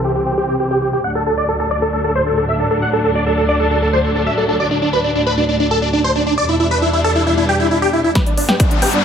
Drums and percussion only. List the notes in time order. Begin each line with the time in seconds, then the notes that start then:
8.15 kick, snare, closed hi-hat
8.26 closed hi-hat
8.38 open hi-hat
8.49 snare, closed hi-hat
8.60 kick, closed hi-hat
8.71 closed hi-hat
8.82 open hi-hat
8.93 closed hi-hat